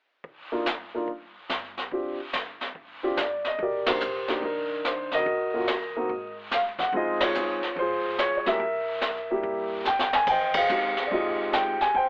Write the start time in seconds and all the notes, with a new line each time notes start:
0.24 brush sweep, kick
0.52 A#3 D4 D#4 F4
0.66 G1, snare, hi-hat pedal
0.94 A#3 D4 D#4 F4
1.08 brush sweep, kick
1.49 G1, snare, hi-hat pedal
1.77 snare
1.92 C4 D4 F4 G4, brush sweep, kick
2.33 G1, snare, hi-hat pedal
2.61 snare
2.75 brush sweep, kick
3.03 C4 D4 F4 G4
3.17 G1 D5, snare, hi-hat pedal
3.45 D#5, snare
3.58 C2 A#4, brush sweep, kick
3.63 G4 D5
3.86 A#3 D4 D#4 G4 C5, snare, ride
4.00 A#1, hi-hat pedal
4.28 A#3 D4 D#4 G4, snare
4.42 D#2 D4 D#4 A#4, brush sweep, kick
4.85 C5, snare, hi-hat pedal
5.11 F#4 A#4 D#5, snare
5.26 D#2, brush sweep, kick
5.54 A#3 C#4 F4 F#4
5.67 snare, hi-hat pedal
5.96 A#3 C4 D#4 F#4
6.09 G#1, brush sweep, kick
6.51 F5, snare, hi-hat pedal
6.79 F#5, kick, snare
6.92 C#2 G#3 C4 D#4 F4 D#5, brush sweep, kick
6.97 G#4 C5
7.20 F4 G#4 C#5, snare, ride
7.34 G#3 C4 D#4 G#4, hi-hat pedal
7.63 snare
7.76 G#1 C5, brush sweep, kick
7.81 F4 G#4
8.18 C#5, snare, hi-hat pedal
8.38 C#5
8.46 G#3 A#3 E4 G4 A#4 E5, snare
8.60 C2, brush sweep, kick
9.01 snare, hi-hat pedal
9.31 G3 A#3 E4 G4
9.43 G2, brush sweep, kick
9.85 G5, snare, hi-hat pedal
9.99 snare
10.13 G#5, snare
10.27 F2 D#5 G5, brush sweep, kick, ride
10.31 C5
10.54 F5, kick, ride
10.58 G#4 C5
10.69 D#2 G#3 C4 D#4 G4, hi-hat pedal
10.97 snare
11.07 D5
11.11 G#2 G#3 C4 D#4 F4 G4 G#4 D#5, brush sweep, kick
11.53 G5, snare, hi-hat pedal
11.81 G#5, snare
11.94 D2 C5 G5, brush sweep, kick